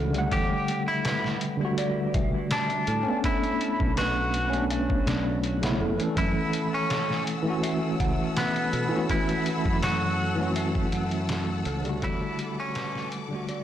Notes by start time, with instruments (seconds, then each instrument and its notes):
Already playing: fingered electric bass C#2, tine electric piano C#4 F#4, synth bell A4 C#5 E5 F#5
0.11 tine electric piano D3 G3, closed hi-hat
0.16 tine electric piano A3 F#5
0.32 fingered electric bass E2, clean electric guitar G4, synth bell A4, kick, closed hi-hat
0.68 closed hi-hat
0.88 clean electric guitar E4
1.05 synth bell B4, snare, closed hi-hat
1.24 snare
1.41 closed hi-hat
1.57 tine electric piano D3 G3
1.62 tine electric piano A3 F#4
1.78 synth bell D5, closed hi-hat
2.14 fingered electric bass B1, synth bell E5, kick, closed hi-hat
2.51 clean electric guitar D4, snare, closed hi-hat
2.70 closed hi-hat
2.87 fingered electric bass A2, synth bell A4, closed hi-hat
3.03 tine electric piano A3 C#4
3.08 tine electric piano B3 D4
3.24 clean electric guitar E4, synth bell A4, kick, closed hi-hat
3.44 closed hi-hat
3.61 closed hi-hat
3.80 fingered electric bass B1, kick
3.97 clean electric guitar F#4, synth bell B4, snare, closed hi-hat
4.34 closed hi-hat
4.50 tine electric piano A3 C#4, closed hi-hat
4.55 tine electric piano B3 D4
4.70 synth bell C#5, closed hi-hat
4.90 kick
5.07 fingered electric bass B1, synth bell D5, snare, closed hi-hat
5.44 closed hi-hat
5.62 tine electric piano C#3 A3 B3 E4, snare, closed hi-hat
5.80 fingered electric bass F#1, synth bell A4
5.96 tine electric piano E3 A3, closed hi-hat
6.01 tine electric piano C#4 A4
6.17 fingered electric bass F#2, clean electric guitar E4, synth bell A4, string section A4 F#5 E6, kick, closed hi-hat
6.53 closed hi-hat
6.74 clean electric guitar C#4
6.90 synth bell C#5, snare, closed hi-hat
7.10 snare
7.27 closed hi-hat
7.43 tine electric piano E3 A3
7.48 tine electric piano C#4 F#4
7.63 synth bell E5, closed hi-hat
8.00 fingered electric bass C#2, synth bell F#5, kick, closed hi-hat
8.37 clean electric guitar B3, snare, closed hi-hat
8.56 closed hi-hat
8.73 fingered electric bass B2, synth bell A4, closed hi-hat
8.88 tine electric piano E3 A3
8.94 tine electric piano C#4 F#4
9.09 clean electric guitar E4, synth bell A4, kick, closed hi-hat
9.29 closed hi-hat
9.46 closed hi-hat
9.65 fingered electric bass F#2, kick
9.83 clean electric guitar F#4, synth bell C#5, snare, closed hi-hat
10.35 tine electric piano E3 A3
10.40 tine electric piano C#4 F#4
10.56 synth bell E5, closed hi-hat
10.75 kick
10.92 fingered electric bass F#2, synth bell F#5, closed hi-hat
11.11 closed hi-hat
11.29 snare, closed hi-hat
11.65 fingered electric bass C#2, synth bell A4, closed hi-hat
11.81 tine electric piano D3 G3, closed hi-hat
11.87 tine electric piano A3 F#4
12.02 fingered electric bass E2, clean electric guitar E4, synth bell A4, string section D6, kick, closed hi-hat
12.39 closed hi-hat
12.60 clean electric guitar C#4
12.75 synth bell B4, snare, closed hi-hat
12.95 snare
13.12 closed hi-hat
13.28 tine electric piano D3 G3
13.33 tine electric piano A3 F#4
13.49 synth bell D5, closed hi-hat